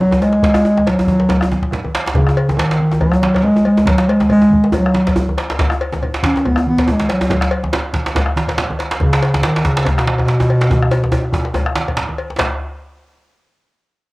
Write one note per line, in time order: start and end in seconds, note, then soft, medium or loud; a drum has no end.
0.00 0.23 F#3 loud
0.00 low conga medium
0.11 djembe tone medium
0.11 djembe tone loud
0.11 high conga medium
0.22 0.90 G#3 loud
0.22 cowbell medium
0.22 djembe tone medium
0.33 djembe slap medium
0.33 high conga soft
0.42 bombo low loud
0.42 djembe slap medium
0.42 high conga medium
0.42 djembe bass medium
0.42 low conga medium
0.54 bombo rim medium
0.54 djembe tone loud
0.65 djembe tone medium
0.77 djembe slap medium
0.77 high conga medium
0.77 djembe tone medium
0.87 1.74 F#3 loud
0.87 cowbell medium
0.87 djembe slap medium
0.87 high conga soft
0.87 low conga medium
0.99 djembe tone loud
1.07 bombo low loud
1.07 djembe slap soft
1.07 djembe tone medium
1.07 high conga medium
1.20 bombo rim soft
1.20 djembe slap medium
1.29 cowbell soft
1.29 djembe slap soft
1.29 djembe slap medium
1.29 high conga soft
1.29 djembe tone medium
1.29 low conga medium
1.29 djembe bass medium
1.41 bombo rim medium
1.41 djembe slap soft
1.41 djembe tone loud
1.51 djembe tone loud
1.51 high conga medium
1.62 bombo low medium
1.62 djembe slap medium
1.71 bombo rim soft
1.71 djembe slap medium
1.71 low conga loud
1.84 high conga medium
1.84 djembe tone medium
1.95 djembe slap loud
2.06 djembe slap medium
2.06 djembe slap loud
2.06 high conga soft
2.14 2.59 C#3 loud
2.14 bombo low loud
2.14 high conga medium
2.14 low conga medium
2.14 djembe bass medium
2.27 bombo rim medium
2.27 djembe tone medium
2.37 cowbell medium
2.48 djembe slap medium
2.48 high conga medium
2.48 djembe tone medium
2.57 3.02 D#3 loud
2.57 cowbell medium
2.57 djembe slap loud
2.57 high conga soft
2.57 low conga loud
2.71 djembe slap medium
2.79 djembe slap soft
2.79 high conga medium
2.91 bombo rim soft
2.91 djembe slap medium
2.91 djembe tone medium
3.00 3.45 F#3 loud
3.00 cowbell soft
3.00 djembe slap soft
3.00 djembe tone medium
3.00 high conga soft
3.00 djembe bass medium
3.00 low conga medium
3.12 bombo rim medium
3.12 djembe slap soft
3.12 djembe tone medium
3.22 djembe slap loud
3.22 high conga loud
3.34 bombo low medium
3.34 cowbell medium
3.34 djembe slap medium
3.36 djembe slap medium
3.43 3.66 G#3 loud
3.43 bombo rim soft
3.43 low conga medium
3.56 djembe tone medium
3.65 3.90 G#3 loud
3.65 cowbell medium
3.77 djembe slap medium
3.77 high conga soft
3.77 djembe tone loud
3.86 4.10 F#3 loud
3.86 bombo rim soft
3.86 bombo low medium
3.86 djembe slap loud
3.86 high conga loud
3.86 low conga medium
3.86 djembe bass medium
3.98 bombo rim medium
3.98 djembe slap medium
3.98 djembe slap soft
4.09 4.30 G#3 loud
4.09 cowbell medium
4.20 bombo rim soft
4.20 djembe slap medium
4.20 high conga medium
4.20 djembe tone medium
4.29 4.71 G#3 loud
4.29 cowbell medium
4.29 low conga medium
4.42 bombo rim soft
4.42 djembe tone medium
4.50 bombo low loud
4.50 djembe slap soft
4.50 high conga medium
4.64 bombo rim soft
4.64 djembe slap medium
4.72 cowbell medium
4.72 djembe tone medium
4.72 djembe bass loud
4.72 low conga medium
4.72 djembe bass medium
4.77 5.35 F#3 medium
4.86 bombo rim medium
4.94 bombo rim soft
4.94 djembe slap medium
4.94 high conga medium
5.07 bombo low medium
5.07 cowbell medium
5.07 djembe slap medium
5.07 high conga soft
5.16 bombo rim soft
5.16 djembe bass loud
5.16 low conga medium
5.28 djembe slap soft
5.28 high conga medium
5.28 djembe tone medium
5.38 bombo rim soft
5.38 cowbell medium
5.38 djembe slap medium
5.38 djembe slap soft
5.50 bombo rim soft
5.50 djembe slap medium
5.52 djembe slap medium
5.59 bombo low loud
5.59 djembe slap loud
5.59 high conga medium
5.59 low conga medium
5.59 djembe bass medium
5.70 bombo rim medium
5.70 djembe tone medium
5.81 cowbell medium
5.92 djembe slap medium
5.92 high conga medium
5.92 djembe tone medium
6.02 cowbell medium
6.02 high conga soft
6.02 low conga medium
6.14 djembe slap medium
6.23 6.48 C#4 loud
6.23 bombo low loud
6.23 djembe slap loud
6.23 djembe slap soft
6.23 high conga medium
6.35 bombo rim soft
6.35 djembe slap medium
6.35 djembe tone medium
6.45 6.67 B3 loud
6.45 cowbell soft
6.45 djembe slap soft
6.45 high conga soft
6.45 djembe tone medium
6.45 low conga medium
6.45 djembe bass medium
6.56 bombo rim medium
6.56 high conga soft
6.56 djembe tone medium
6.67 6.93 B3 loud
6.67 high conga medium
6.77 bombo low medium
6.77 cowbell medium
6.77 djembe slap medium
6.87 bombo rim soft
6.87 djembe tone loud
6.87 low conga loud
6.92 7.11 G#3 loud
7.00 djembe slap medium
7.00 high conga medium
7.00 djembe tone medium
7.09 7.71 F#3 medium
7.09 cowbell medium
7.09 djembe slap medium
7.21 djembe slap medium
7.21 djembe tone loud
7.30 bombo low loud
7.30 djembe slap medium
7.30 high conga medium
7.30 low conga medium
7.30 djembe bass medium
7.41 bombo rim medium
7.41 djembe slap medium
7.51 cowbell medium
7.64 djembe slap medium
7.64 high conga medium
7.64 djembe tone medium
7.73 cowbell medium
7.73 djembe slap loud
7.73 high conga soft
7.73 low conga medium
7.93 bombo low loud
7.93 djembe slap medium
7.93 djembe slap soft
7.93 high conga medium
8.05 bombo rim soft
8.05 djembe slap medium
8.15 cowbell soft
8.15 djembe slap loud
8.15 djembe slap soft
8.15 high conga soft
8.15 djembe tone medium
8.15 low conga medium
8.15 djembe bass medium
8.26 bombo rim medium
8.26 djembe slap soft
8.26 high conga soft
8.36 djembe slap medium
8.36 high conga medium
8.47 bombo low medium
8.47 cowbell soft
8.47 djembe slap medium
8.57 bombo rim soft
8.57 djembe slap loud
8.57 low conga loud
8.69 high conga medium
8.69 djembe tone medium
8.79 cowbell soft
8.79 djembe slap medium
8.91 djembe slap loud
8.91 djembe slap medium
9.00 9.47 C#3 loud
9.00 bombo low loud
9.00 high conga medium
9.00 low conga medium
9.00 djembe bass medium
9.13 bombo rim medium
9.13 djembe slap loud
9.22 cowbell medium
9.22 djembe slap medium
9.33 djembe slap medium
9.33 high conga medium
9.33 djembe tone medium
9.42 9.69 D#3 loud
9.42 cowbell soft
9.42 djembe slap loud
9.42 high conga soft
9.42 low conga medium
9.56 djembe slap medium
9.63 9.89 C#3 loud
9.63 bombo low medium
9.63 djembe slap medium
9.63 djembe slap soft
9.63 high conga medium
9.77 bombo rim soft
9.77 djembe slap loud
9.77 djembe slap medium
9.85 11.98 B2 loud
9.85 cowbell soft
9.85 djembe slap medium
9.85 djembe slap soft
9.85 high conga soft
9.85 djembe tone medium
9.85 low conga medium
9.85 djembe bass medium
9.97 bombo rim medium
9.97 djembe slap soft
9.97 djembe slap medium
9.97 high conga soft
10.06 djembe slap loud
10.06 high conga medium
10.18 bombo low medium
10.18 cowbell medium
10.18 djembe slap medium
10.27 bombo rim soft
10.27 djembe slap medium
10.27 low conga medium
10.39 high conga medium
10.39 djembe tone medium
10.39 djembe tone loud
10.50 cowbell medium
10.61 djembe slap medium
10.70 bombo low loud
10.70 djembe slap soft
10.70 high conga medium
10.70 djembe tone loud
10.70 low conga medium
10.70 djembe bass medium
10.82 bombo rim medium
10.82 djembe slap soft
10.91 cowbell medium
10.91 djembe tone loud
11.03 bombo rim soft
11.03 djembe slap medium
11.03 high conga medium
11.03 djembe tone medium
11.12 cowbell medium
11.12 djembe tone loud
11.12 high conga soft
11.12 low conga medium
11.25 bombo rim soft
11.33 bombo low loud
11.33 high conga medium
11.33 djembe tone loud
11.45 bombo rim soft
11.45 djembe slap medium
11.45 high conga soft
11.54 bombo rim soft
11.54 cowbell medium
11.54 djembe tone medium
11.54 djembe tone loud
11.54 low conga medium
11.54 djembe bass medium
11.66 bombo rim medium
11.76 djembe slap loud
11.76 high conga medium
11.88 bombo low medium
11.88 cowbell medium
11.88 djembe slap medium
11.96 djembe slap loud
11.96 djembe slap soft
11.96 high conga soft
11.96 low conga medium
12.08 high conga medium
12.08 djembe tone medium
12.18 cowbell medium
12.18 djembe slap soft
12.30 djembe slap medium
12.38 bombo low medium
12.38 cowbell medium
12.38 djembe slap loud
12.38 low conga medium
12.38 djembe bass medium